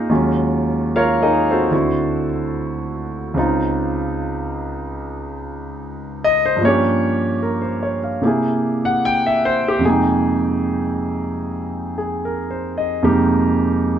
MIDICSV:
0, 0, Header, 1, 2, 480
1, 0, Start_track
1, 0, Key_signature, -4, "minor"
1, 0, Tempo, 814111
1, 59, Time_signature, 4, 2, 24, 8
1, 3420, Tempo, 804290
1, 8309, End_track
2, 0, Start_track
2, 0, Title_t, "Grand piano"
2, 0, Program_c, 0, 0
2, 0, Control_c, 0, 64, 127
2, 0, Note_on_c, 0, 58, 53
2, 0, Note_on_c, 0, 60, 52
2, 0, Note_on_c, 0, 63, 51
2, 0, Note_on_c, 0, 65, 52
2, 0, Note_on_c, 0, 68, 57
2, 0, Note_on_c, 0, 70, 67
2, 0, Note_on_c, 0, 72, 68
2, 0, Note_on_c, 0, 75, 69
2, 54, Note_on_c, 0, 39, 47
2, 55, Note_on_c, 0, 51, 42
2, 56, Note_on_c, 0, 54, 43
2, 59, Note_on_c, 0, 56, 44
2, 62, Note_on_c, 0, 61, 44
2, 64, Note_off_c, 0, 65, 0
2, 64, Note_on_c, 0, 65, 49
2, 67, Note_off_c, 0, 63, 0
2, 67, Control_c, 0, 64, 0
2, 69, Note_off_c, 0, 72, 0
2, 69, Note_off_c, 0, 75, 0
2, 70, Note_off_c, 0, 60, 0
2, 70, Note_off_c, 0, 68, 0
2, 70, Note_off_c, 0, 70, 0
2, 73, Note_off_c, 0, 58, 0
2, 172, Control_c, 0, 64, 127
2, 556, Note_off_c, 0, 65, 0
2, 565, Note_on_c, 0, 65, 59
2, 565, Note_on_c, 0, 77, 75
2, 568, Note_on_c, 0, 70, 63
2, 568, Note_on_c, 0, 73, 67
2, 704, Note_off_c, 0, 65, 0
2, 705, Note_off_c, 0, 77, 0
2, 706, Note_off_c, 0, 70, 0
2, 706, Note_off_c, 0, 73, 0
2, 721, Note_on_c, 0, 75, 61
2, 725, Note_on_c, 0, 63, 51
2, 725, Note_on_c, 0, 68, 46
2, 726, Note_on_c, 0, 70, 49
2, 863, Note_off_c, 0, 75, 0
2, 865, Note_off_c, 0, 63, 0
2, 865, Note_off_c, 0, 68, 0
2, 866, Note_off_c, 0, 70, 0
2, 888, Note_on_c, 0, 72, 59
2, 890, Note_on_c, 0, 69, 46
2, 891, Note_on_c, 0, 60, 45
2, 898, Note_on_c, 0, 66, 47
2, 1004, Note_off_c, 0, 60, 0
2, 1007, Note_on_c, 0, 38, 45
2, 1009, Note_off_c, 0, 66, 0
2, 1009, Note_on_c, 0, 50, 42
2, 1012, Note_off_c, 0, 39, 0
2, 1013, Note_off_c, 0, 51, 0
2, 1013, Note_off_c, 0, 54, 0
2, 1013, Note_on_c, 0, 60, 42
2, 1014, Note_off_c, 0, 56, 0
2, 1015, Note_on_c, 0, 64, 43
2, 1016, Note_off_c, 0, 61, 0
2, 1018, Note_on_c, 0, 66, 51
2, 1024, Control_c, 0, 64, 0
2, 1109, Control_c, 0, 64, 127
2, 1330, Note_off_c, 0, 72, 0
2, 1331, Note_off_c, 0, 69, 0
2, 1970, Note_on_c, 0, 37, 51
2, 1975, Note_off_c, 0, 60, 0
2, 1975, Note_on_c, 0, 49, 47
2, 1978, Note_off_c, 0, 38, 0
2, 1979, Note_off_c, 0, 50, 0
2, 1982, Note_off_c, 0, 64, 0
2, 1983, Note_off_c, 0, 66, 0
2, 1984, Note_on_c, 0, 60, 47
2, 1990, Control_c, 0, 64, 0
2, 1990, Note_on_c, 0, 63, 51
2, 1999, Note_on_c, 0, 65, 53
2, 2111, Control_c, 0, 64, 127
2, 3685, Note_on_c, 0, 75, 85
2, 3790, Note_off_c, 0, 75, 0
2, 3811, Note_on_c, 0, 72, 70
2, 3877, Note_on_c, 0, 43, 48
2, 3891, Note_on_c, 0, 53, 42
2, 3892, Note_off_c, 0, 72, 0
2, 3896, Note_off_c, 0, 37, 0
2, 3898, Note_off_c, 0, 49, 0
2, 3903, Note_off_c, 0, 60, 0
2, 3905, Note_off_c, 0, 63, 0
2, 3908, Control_c, 0, 64, 0
2, 3909, Note_on_c, 0, 58, 43
2, 3910, Note_off_c, 0, 65, 0
2, 3926, Note_on_c, 0, 61, 44
2, 3926, Note_on_c, 0, 73, 71
2, 3941, Note_on_c, 0, 67, 52
2, 4016, Control_c, 0, 64, 127
2, 4370, Note_off_c, 0, 73, 0
2, 4389, Note_on_c, 0, 70, 43
2, 4504, Note_on_c, 0, 72, 41
2, 4613, Note_off_c, 0, 70, 0
2, 4629, Note_on_c, 0, 73, 41
2, 4710, Note_off_c, 0, 72, 0
2, 4752, Note_on_c, 0, 77, 42
2, 4774, Note_off_c, 0, 73, 0
2, 4850, Note_off_c, 0, 43, 0
2, 4857, Note_off_c, 0, 53, 0
2, 4861, Note_off_c, 0, 67, 0
2, 4861, Note_on_c, 0, 48, 43
2, 4866, Note_off_c, 0, 58, 0
2, 4869, Control_c, 0, 64, 0
2, 4870, Note_on_c, 0, 67, 37
2, 4875, Note_off_c, 0, 61, 0
2, 4876, Note_on_c, 0, 58, 42
2, 4882, Note_on_c, 0, 64, 38
2, 4894, Note_on_c, 0, 68, 47
2, 4915, Note_off_c, 0, 77, 0
2, 4972, Control_c, 0, 64, 127
2, 5241, Note_on_c, 0, 78, 68
2, 5327, Note_off_c, 0, 78, 0
2, 5361, Note_on_c, 0, 79, 88
2, 5487, Note_on_c, 0, 76, 65
2, 5508, Note_off_c, 0, 79, 0
2, 5600, Note_on_c, 0, 72, 86
2, 5652, Note_off_c, 0, 76, 0
2, 5706, Note_off_c, 0, 72, 0
2, 5728, Note_off_c, 0, 67, 0
2, 5737, Note_on_c, 0, 67, 66
2, 5799, Note_on_c, 0, 41, 45
2, 5805, Note_off_c, 0, 48, 0
2, 5814, Note_on_c, 0, 48, 42
2, 5815, Note_off_c, 0, 67, 0
2, 5826, Note_off_c, 0, 58, 0
2, 5827, Control_c, 0, 64, 0
2, 5828, Note_on_c, 0, 56, 40
2, 5829, Note_off_c, 0, 64, 0
2, 5829, Note_off_c, 0, 68, 0
2, 5838, Note_on_c, 0, 68, 67
2, 5839, Note_on_c, 0, 58, 39
2, 5850, Note_on_c, 0, 63, 42
2, 5864, Note_on_c, 0, 79, 50
2, 5919, Control_c, 0, 64, 127
2, 7098, Note_off_c, 0, 68, 0
2, 7107, Note_on_c, 0, 68, 40
2, 7269, Note_on_c, 0, 70, 46
2, 7352, Note_off_c, 0, 68, 0
2, 7421, Note_on_c, 0, 72, 47
2, 7566, Note_off_c, 0, 70, 0
2, 7583, Note_on_c, 0, 75, 53
2, 7669, Note_off_c, 0, 72, 0
2, 7723, Note_off_c, 0, 41, 0
2, 7726, Note_off_c, 0, 48, 0
2, 7726, Note_off_c, 0, 56, 0
2, 7729, Note_off_c, 0, 58, 0
2, 7732, Note_off_c, 0, 63, 0
2, 7732, Note_on_c, 0, 41, 52
2, 7735, Note_on_c, 0, 48, 44
2, 7735, Note_on_c, 0, 56, 46
2, 7738, Note_on_c, 0, 58, 47
2, 7741, Note_on_c, 0, 63, 49
2, 7743, Note_on_c, 0, 67, 55
2, 7761, Note_off_c, 0, 79, 0
2, 7830, Note_off_c, 0, 75, 0
2, 8309, Note_off_c, 0, 41, 0
2, 8309, Note_off_c, 0, 48, 0
2, 8309, Note_off_c, 0, 56, 0
2, 8309, Note_off_c, 0, 58, 0
2, 8309, Note_off_c, 0, 63, 0
2, 8309, Note_off_c, 0, 67, 0
2, 8309, End_track
0, 0, End_of_file